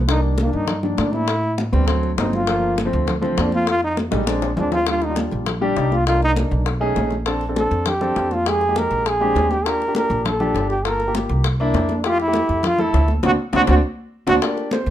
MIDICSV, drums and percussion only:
0, 0, Header, 1, 2, 480
1, 0, Start_track
1, 0, Tempo, 298656
1, 135, Time_signature, 4, 2, 24, 8
1, 23952, End_track
2, 0, Start_track
2, 0, Title_t, "Drums"
2, 133, Note_on_c, 9, 63, 34
2, 139, Note_on_c, 9, 60, 71
2, 293, Note_off_c, 9, 63, 0
2, 300, Note_off_c, 9, 60, 0
2, 370, Note_on_c, 9, 63, 35
2, 531, Note_off_c, 9, 63, 0
2, 606, Note_on_c, 9, 63, 94
2, 612, Note_on_c, 9, 60, 55
2, 767, Note_off_c, 9, 63, 0
2, 772, Note_off_c, 9, 60, 0
2, 848, Note_on_c, 9, 63, 33
2, 1009, Note_off_c, 9, 63, 0
2, 1083, Note_on_c, 9, 63, 35
2, 1083, Note_on_c, 9, 64, 83
2, 1087, Note_on_c, 9, 60, 57
2, 1243, Note_off_c, 9, 63, 0
2, 1243, Note_off_c, 9, 64, 0
2, 1247, Note_off_c, 9, 60, 0
2, 1335, Note_on_c, 9, 63, 36
2, 1335, Note_on_c, 9, 64, 76
2, 1496, Note_off_c, 9, 63, 0
2, 1496, Note_off_c, 9, 64, 0
2, 1569, Note_on_c, 9, 63, 76
2, 1579, Note_on_c, 9, 60, 61
2, 1579, Note_on_c, 9, 61, 73
2, 1730, Note_off_c, 9, 63, 0
2, 1740, Note_off_c, 9, 60, 0
2, 1740, Note_off_c, 9, 61, 0
2, 1814, Note_on_c, 9, 63, 77
2, 1975, Note_off_c, 9, 63, 0
2, 2053, Note_on_c, 9, 60, 70
2, 2061, Note_on_c, 9, 63, 35
2, 2213, Note_off_c, 9, 60, 0
2, 2222, Note_off_c, 9, 63, 0
2, 2305, Note_on_c, 9, 63, 32
2, 2465, Note_off_c, 9, 63, 0
2, 2540, Note_on_c, 9, 60, 58
2, 2541, Note_on_c, 9, 63, 89
2, 2700, Note_off_c, 9, 60, 0
2, 2701, Note_off_c, 9, 63, 0
2, 2786, Note_on_c, 9, 63, 35
2, 2789, Note_on_c, 9, 60, 33
2, 2946, Note_off_c, 9, 63, 0
2, 2950, Note_off_c, 9, 60, 0
2, 3016, Note_on_c, 9, 60, 60
2, 3021, Note_on_c, 9, 63, 33
2, 3177, Note_off_c, 9, 60, 0
2, 3181, Note_off_c, 9, 63, 0
2, 3266, Note_on_c, 9, 60, 35
2, 3274, Note_on_c, 9, 63, 38
2, 3427, Note_off_c, 9, 60, 0
2, 3435, Note_off_c, 9, 63, 0
2, 3505, Note_on_c, 9, 60, 71
2, 3505, Note_on_c, 9, 61, 79
2, 3517, Note_on_c, 9, 63, 80
2, 3666, Note_off_c, 9, 60, 0
2, 3666, Note_off_c, 9, 61, 0
2, 3678, Note_off_c, 9, 63, 0
2, 3747, Note_on_c, 9, 60, 33
2, 3751, Note_on_c, 9, 63, 76
2, 3908, Note_off_c, 9, 60, 0
2, 3912, Note_off_c, 9, 63, 0
2, 3975, Note_on_c, 9, 60, 74
2, 3998, Note_on_c, 9, 63, 34
2, 4136, Note_off_c, 9, 60, 0
2, 4159, Note_off_c, 9, 63, 0
2, 4236, Note_on_c, 9, 63, 31
2, 4397, Note_off_c, 9, 63, 0
2, 4466, Note_on_c, 9, 60, 61
2, 4468, Note_on_c, 9, 63, 93
2, 4626, Note_off_c, 9, 60, 0
2, 4628, Note_off_c, 9, 63, 0
2, 4707, Note_on_c, 9, 63, 33
2, 4868, Note_off_c, 9, 63, 0
2, 4939, Note_on_c, 9, 63, 35
2, 4939, Note_on_c, 9, 64, 82
2, 4946, Note_on_c, 9, 60, 58
2, 5100, Note_off_c, 9, 63, 0
2, 5100, Note_off_c, 9, 64, 0
2, 5107, Note_off_c, 9, 60, 0
2, 5184, Note_on_c, 9, 63, 38
2, 5184, Note_on_c, 9, 64, 81
2, 5344, Note_off_c, 9, 63, 0
2, 5344, Note_off_c, 9, 64, 0
2, 5421, Note_on_c, 9, 63, 86
2, 5427, Note_on_c, 9, 60, 68
2, 5427, Note_on_c, 9, 61, 79
2, 5582, Note_off_c, 9, 63, 0
2, 5588, Note_off_c, 9, 60, 0
2, 5588, Note_off_c, 9, 61, 0
2, 5662, Note_on_c, 9, 63, 76
2, 5823, Note_off_c, 9, 63, 0
2, 5901, Note_on_c, 9, 60, 71
2, 5917, Note_on_c, 9, 63, 34
2, 6062, Note_off_c, 9, 60, 0
2, 6078, Note_off_c, 9, 63, 0
2, 6149, Note_on_c, 9, 63, 33
2, 6310, Note_off_c, 9, 63, 0
2, 6384, Note_on_c, 9, 63, 91
2, 6385, Note_on_c, 9, 60, 57
2, 6545, Note_off_c, 9, 60, 0
2, 6545, Note_off_c, 9, 63, 0
2, 6617, Note_on_c, 9, 60, 87
2, 6778, Note_off_c, 9, 60, 0
2, 6865, Note_on_c, 9, 60, 82
2, 6865, Note_on_c, 9, 63, 75
2, 7026, Note_off_c, 9, 60, 0
2, 7026, Note_off_c, 9, 63, 0
2, 7107, Note_on_c, 9, 61, 90
2, 7268, Note_off_c, 9, 61, 0
2, 7344, Note_on_c, 9, 64, 95
2, 7504, Note_off_c, 9, 64, 0
2, 7582, Note_on_c, 9, 64, 73
2, 7584, Note_on_c, 9, 61, 90
2, 7743, Note_off_c, 9, 64, 0
2, 7745, Note_off_c, 9, 61, 0
2, 7820, Note_on_c, 9, 60, 72
2, 7833, Note_on_c, 9, 63, 33
2, 7980, Note_off_c, 9, 60, 0
2, 7994, Note_off_c, 9, 63, 0
2, 8061, Note_on_c, 9, 60, 32
2, 8075, Note_on_c, 9, 63, 33
2, 8222, Note_off_c, 9, 60, 0
2, 8235, Note_off_c, 9, 63, 0
2, 8295, Note_on_c, 9, 60, 57
2, 8311, Note_on_c, 9, 63, 92
2, 8456, Note_off_c, 9, 60, 0
2, 8472, Note_off_c, 9, 63, 0
2, 8540, Note_on_c, 9, 60, 33
2, 8555, Note_on_c, 9, 63, 34
2, 8700, Note_off_c, 9, 60, 0
2, 8716, Note_off_c, 9, 63, 0
2, 8782, Note_on_c, 9, 60, 65
2, 8789, Note_on_c, 9, 63, 35
2, 8789, Note_on_c, 9, 64, 77
2, 8943, Note_off_c, 9, 60, 0
2, 8950, Note_off_c, 9, 63, 0
2, 8950, Note_off_c, 9, 64, 0
2, 9031, Note_on_c, 9, 63, 35
2, 9191, Note_off_c, 9, 63, 0
2, 9266, Note_on_c, 9, 60, 33
2, 9266, Note_on_c, 9, 61, 82
2, 9266, Note_on_c, 9, 63, 35
2, 9426, Note_off_c, 9, 60, 0
2, 9426, Note_off_c, 9, 61, 0
2, 9426, Note_off_c, 9, 63, 0
2, 9508, Note_on_c, 9, 63, 65
2, 9517, Note_on_c, 9, 60, 35
2, 9669, Note_off_c, 9, 63, 0
2, 9677, Note_off_c, 9, 60, 0
2, 9754, Note_on_c, 9, 60, 67
2, 9914, Note_off_c, 9, 60, 0
2, 9991, Note_on_c, 9, 63, 33
2, 10004, Note_on_c, 9, 60, 32
2, 10152, Note_off_c, 9, 63, 0
2, 10164, Note_off_c, 9, 60, 0
2, 10228, Note_on_c, 9, 63, 93
2, 10241, Note_on_c, 9, 60, 56
2, 10389, Note_off_c, 9, 63, 0
2, 10401, Note_off_c, 9, 60, 0
2, 10477, Note_on_c, 9, 60, 33
2, 10638, Note_off_c, 9, 60, 0
2, 10705, Note_on_c, 9, 60, 62
2, 10708, Note_on_c, 9, 63, 34
2, 10865, Note_off_c, 9, 60, 0
2, 10869, Note_off_c, 9, 63, 0
2, 10965, Note_on_c, 9, 63, 37
2, 11126, Note_off_c, 9, 63, 0
2, 11188, Note_on_c, 9, 60, 34
2, 11188, Note_on_c, 9, 61, 80
2, 11204, Note_on_c, 9, 63, 86
2, 11348, Note_off_c, 9, 60, 0
2, 11348, Note_off_c, 9, 61, 0
2, 11365, Note_off_c, 9, 63, 0
2, 11419, Note_on_c, 9, 60, 35
2, 11445, Note_on_c, 9, 63, 72
2, 11580, Note_off_c, 9, 60, 0
2, 11606, Note_off_c, 9, 63, 0
2, 11667, Note_on_c, 9, 60, 69
2, 11687, Note_on_c, 9, 63, 34
2, 11828, Note_off_c, 9, 60, 0
2, 11848, Note_off_c, 9, 63, 0
2, 11908, Note_on_c, 9, 60, 33
2, 11923, Note_on_c, 9, 63, 33
2, 12069, Note_off_c, 9, 60, 0
2, 12084, Note_off_c, 9, 63, 0
2, 12156, Note_on_c, 9, 60, 54
2, 12159, Note_on_c, 9, 63, 94
2, 12317, Note_off_c, 9, 60, 0
2, 12319, Note_off_c, 9, 63, 0
2, 12400, Note_on_c, 9, 60, 34
2, 12410, Note_on_c, 9, 63, 32
2, 12561, Note_off_c, 9, 60, 0
2, 12571, Note_off_c, 9, 63, 0
2, 12628, Note_on_c, 9, 60, 66
2, 12644, Note_on_c, 9, 63, 35
2, 12644, Note_on_c, 9, 64, 78
2, 12789, Note_off_c, 9, 60, 0
2, 12804, Note_off_c, 9, 63, 0
2, 12804, Note_off_c, 9, 64, 0
2, 12873, Note_on_c, 9, 63, 37
2, 12873, Note_on_c, 9, 64, 75
2, 13033, Note_off_c, 9, 63, 0
2, 13033, Note_off_c, 9, 64, 0
2, 13118, Note_on_c, 9, 60, 34
2, 13118, Note_on_c, 9, 61, 76
2, 13123, Note_on_c, 9, 63, 34
2, 13279, Note_off_c, 9, 60, 0
2, 13279, Note_off_c, 9, 61, 0
2, 13283, Note_off_c, 9, 63, 0
2, 13356, Note_on_c, 9, 60, 35
2, 13364, Note_on_c, 9, 63, 64
2, 13517, Note_off_c, 9, 60, 0
2, 13525, Note_off_c, 9, 63, 0
2, 13601, Note_on_c, 9, 63, 33
2, 13602, Note_on_c, 9, 60, 68
2, 13762, Note_off_c, 9, 63, 0
2, 13763, Note_off_c, 9, 60, 0
2, 13838, Note_on_c, 9, 60, 32
2, 13849, Note_on_c, 9, 63, 35
2, 13999, Note_off_c, 9, 60, 0
2, 14010, Note_off_c, 9, 63, 0
2, 14078, Note_on_c, 9, 60, 55
2, 14078, Note_on_c, 9, 63, 92
2, 14239, Note_off_c, 9, 60, 0
2, 14239, Note_off_c, 9, 63, 0
2, 14315, Note_on_c, 9, 60, 33
2, 14476, Note_off_c, 9, 60, 0
2, 14558, Note_on_c, 9, 63, 36
2, 14561, Note_on_c, 9, 60, 61
2, 14718, Note_off_c, 9, 63, 0
2, 14722, Note_off_c, 9, 60, 0
2, 14805, Note_on_c, 9, 63, 35
2, 14966, Note_off_c, 9, 63, 0
2, 15044, Note_on_c, 9, 63, 81
2, 15049, Note_on_c, 9, 60, 34
2, 15049, Note_on_c, 9, 61, 81
2, 15205, Note_off_c, 9, 63, 0
2, 15210, Note_off_c, 9, 60, 0
2, 15210, Note_off_c, 9, 61, 0
2, 15281, Note_on_c, 9, 63, 82
2, 15290, Note_on_c, 9, 60, 35
2, 15441, Note_off_c, 9, 63, 0
2, 15451, Note_off_c, 9, 60, 0
2, 15518, Note_on_c, 9, 63, 34
2, 15530, Note_on_c, 9, 60, 69
2, 15679, Note_off_c, 9, 63, 0
2, 15690, Note_off_c, 9, 60, 0
2, 15753, Note_on_c, 9, 63, 34
2, 15779, Note_on_c, 9, 60, 34
2, 15914, Note_off_c, 9, 63, 0
2, 15940, Note_off_c, 9, 60, 0
2, 15989, Note_on_c, 9, 63, 94
2, 16011, Note_on_c, 9, 60, 60
2, 16150, Note_off_c, 9, 63, 0
2, 16172, Note_off_c, 9, 60, 0
2, 16233, Note_on_c, 9, 63, 34
2, 16253, Note_on_c, 9, 60, 32
2, 16394, Note_off_c, 9, 63, 0
2, 16414, Note_off_c, 9, 60, 0
2, 16480, Note_on_c, 9, 63, 35
2, 16480, Note_on_c, 9, 64, 83
2, 16486, Note_on_c, 9, 60, 60
2, 16640, Note_off_c, 9, 63, 0
2, 16640, Note_off_c, 9, 64, 0
2, 16646, Note_off_c, 9, 60, 0
2, 16716, Note_on_c, 9, 63, 36
2, 16716, Note_on_c, 9, 64, 75
2, 16877, Note_off_c, 9, 63, 0
2, 16877, Note_off_c, 9, 64, 0
2, 16967, Note_on_c, 9, 60, 33
2, 16967, Note_on_c, 9, 61, 79
2, 16971, Note_on_c, 9, 63, 36
2, 17128, Note_off_c, 9, 60, 0
2, 17128, Note_off_c, 9, 61, 0
2, 17132, Note_off_c, 9, 63, 0
2, 17197, Note_on_c, 9, 60, 33
2, 17358, Note_off_c, 9, 60, 0
2, 17439, Note_on_c, 9, 63, 37
2, 17441, Note_on_c, 9, 60, 66
2, 17600, Note_off_c, 9, 63, 0
2, 17602, Note_off_c, 9, 60, 0
2, 17673, Note_on_c, 9, 60, 32
2, 17682, Note_on_c, 9, 63, 33
2, 17834, Note_off_c, 9, 60, 0
2, 17843, Note_off_c, 9, 63, 0
2, 17915, Note_on_c, 9, 60, 59
2, 17917, Note_on_c, 9, 63, 94
2, 18076, Note_off_c, 9, 60, 0
2, 18078, Note_off_c, 9, 63, 0
2, 18154, Note_on_c, 9, 60, 31
2, 18314, Note_off_c, 9, 60, 0
2, 18392, Note_on_c, 9, 60, 63
2, 18395, Note_on_c, 9, 63, 34
2, 18553, Note_off_c, 9, 60, 0
2, 18556, Note_off_c, 9, 63, 0
2, 18636, Note_on_c, 9, 63, 37
2, 18797, Note_off_c, 9, 63, 0
2, 18869, Note_on_c, 9, 63, 85
2, 18875, Note_on_c, 9, 60, 35
2, 18875, Note_on_c, 9, 61, 82
2, 19029, Note_off_c, 9, 63, 0
2, 19036, Note_off_c, 9, 60, 0
2, 19036, Note_off_c, 9, 61, 0
2, 19107, Note_on_c, 9, 63, 79
2, 19114, Note_on_c, 9, 60, 36
2, 19268, Note_off_c, 9, 63, 0
2, 19275, Note_off_c, 9, 60, 0
2, 19349, Note_on_c, 9, 63, 35
2, 19351, Note_on_c, 9, 60, 71
2, 19510, Note_off_c, 9, 63, 0
2, 19512, Note_off_c, 9, 60, 0
2, 19602, Note_on_c, 9, 60, 31
2, 19604, Note_on_c, 9, 63, 34
2, 19762, Note_off_c, 9, 60, 0
2, 19765, Note_off_c, 9, 63, 0
2, 19824, Note_on_c, 9, 63, 91
2, 19829, Note_on_c, 9, 60, 59
2, 19985, Note_off_c, 9, 63, 0
2, 19989, Note_off_c, 9, 60, 0
2, 20069, Note_on_c, 9, 63, 34
2, 20075, Note_on_c, 9, 60, 36
2, 20230, Note_off_c, 9, 63, 0
2, 20236, Note_off_c, 9, 60, 0
2, 20300, Note_on_c, 9, 63, 35
2, 20300, Note_on_c, 9, 64, 83
2, 20316, Note_on_c, 9, 60, 64
2, 20461, Note_off_c, 9, 63, 0
2, 20461, Note_off_c, 9, 64, 0
2, 20477, Note_off_c, 9, 60, 0
2, 20547, Note_on_c, 9, 63, 39
2, 20547, Note_on_c, 9, 64, 74
2, 20707, Note_off_c, 9, 63, 0
2, 20707, Note_off_c, 9, 64, 0
2, 20785, Note_on_c, 9, 63, 34
2, 20799, Note_on_c, 9, 60, 32
2, 20799, Note_on_c, 9, 61, 84
2, 20946, Note_off_c, 9, 63, 0
2, 20960, Note_off_c, 9, 60, 0
2, 20960, Note_off_c, 9, 61, 0
2, 21023, Note_on_c, 9, 60, 36
2, 21027, Note_on_c, 9, 63, 67
2, 21184, Note_off_c, 9, 60, 0
2, 21188, Note_off_c, 9, 63, 0
2, 21262, Note_on_c, 9, 63, 99
2, 21267, Note_on_c, 9, 61, 96
2, 21423, Note_off_c, 9, 63, 0
2, 21428, Note_off_c, 9, 61, 0
2, 21741, Note_on_c, 9, 63, 101
2, 21747, Note_on_c, 9, 61, 96
2, 21901, Note_off_c, 9, 63, 0
2, 21908, Note_off_c, 9, 61, 0
2, 21977, Note_on_c, 9, 61, 93
2, 21981, Note_on_c, 9, 63, 100
2, 22137, Note_off_c, 9, 61, 0
2, 22142, Note_off_c, 9, 63, 0
2, 22942, Note_on_c, 9, 61, 102
2, 22942, Note_on_c, 9, 63, 95
2, 23102, Note_off_c, 9, 61, 0
2, 23103, Note_off_c, 9, 63, 0
2, 23178, Note_on_c, 9, 60, 74
2, 23338, Note_off_c, 9, 60, 0
2, 23412, Note_on_c, 9, 63, 35
2, 23425, Note_on_c, 9, 60, 32
2, 23573, Note_off_c, 9, 63, 0
2, 23586, Note_off_c, 9, 60, 0
2, 23647, Note_on_c, 9, 63, 97
2, 23669, Note_on_c, 9, 60, 60
2, 23807, Note_off_c, 9, 63, 0
2, 23830, Note_off_c, 9, 60, 0
2, 23897, Note_on_c, 9, 63, 33
2, 23901, Note_on_c, 9, 60, 34
2, 23952, Note_off_c, 9, 60, 0
2, 23952, Note_off_c, 9, 63, 0
2, 23952, End_track
0, 0, End_of_file